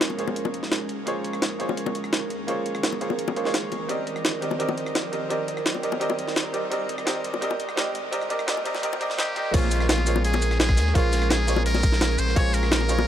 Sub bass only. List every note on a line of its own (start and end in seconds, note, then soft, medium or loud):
0.00 0.88 A#1 loud
1.07 2.32 A#1 loud
2.30 2.46 D#2 medium
2.48 3.36 A#1 medium
3.36 3.70 A#1 loud
3.72 3.88 A#1 medium
3.89 5.14 C2 medium
5.13 5.29 F2 medium
5.30 6.53 C2 medium
6.72 7.96 C2 loud
7.95 8.11 F2 medium
8.13 9.38 C2 loud
9.36 9.52 G1 medium
9.54 10.79 A#1 loud
10.77 10.93 D#2 medium
10.95 11.83 A#1 loud
11.83 12.17 A#1 loud
12.19 12.35 A#1 medium
12.36 13.07 A#1 loud